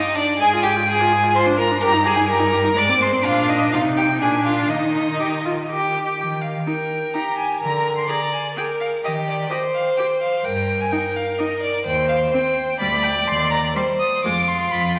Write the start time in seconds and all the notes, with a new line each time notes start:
Already playing: D#4 D#5
0.15 D4 D5
0.39 G#2 G#4 G#5
0.53 F4
0.63 G4 G#4 G5
0.76 F4
0.88 G#4 G#5
1.01 F4
1.13 G#4
1.24 F4
1.35 F4 C5 C6
1.47 D4
1.58 F4 A#4 A#5
1.71 D4
1.81 G2 G4 A#4 A#5
1.95 D#4
2.05 G4 G#4 G#5
2.17 D#4
2.27 G4 A#4 A#5
2.40 D#4
2.52 G4
2.64 D#4
2.76 G#2 G#3 D5 D6
2.89 C4
3.00 G#3 C5 C6
3.12 C4
3.23 A#2 D4 F4 F5
3.49 D#4 D#5
3.72 C3 D#4 F4 F5
3.97 G4 G5
4.20 A#2 D4 G#4 G#5
4.45 F4 F5
4.70 D#3 D#4 D#5
5.20 G4
5.45 F4
5.70 G4
6.18 D#3 G5
6.42 F5
6.66 D#4 A#4 G5
7.14 D#4 G4 A#5
7.37 G#5
7.61 D3 A#4 A#5
7.97 C6
8.09 G#4 D5 A#5
8.33 G#5
8.55 G#4 A#4 G5
8.80 F5
9.04 D#3 G4 D#5
9.28 D5
9.50 G4 C5 D#5
9.74 F5
9.97 G4 G5
10.21 F5
10.44 G2 A#4 G5
10.81 G#5
10.91 D#4 A#4 G5
11.16 F5
11.39 D#4 D#5
11.63 D5
11.85 D#2 C5 G5
12.09 F5
12.33 C4 G5
12.80 D2 G3 D5 B5
13.03 G5
13.27 D#2 C6
13.51 A#5
13.76 G3 C5 C6
14.00 D#6
14.23 F2 G#3 F4 D6
14.48 C6
14.71 F2 B5